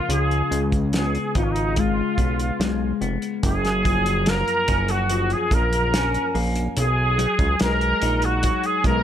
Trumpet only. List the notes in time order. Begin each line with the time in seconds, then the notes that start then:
Already playing: F4
0.12 G#4
0.95 G#4
1.37 D#4
1.43 C#4
1.51 D#4
1.79 F4
3.45 G#4
4.28 A#4
4.90 F#4
5.33 G#4
5.53 A#4
6.79 G#4
7.62 A#4
8.25 F#4
8.66 G#4
8.86 A#4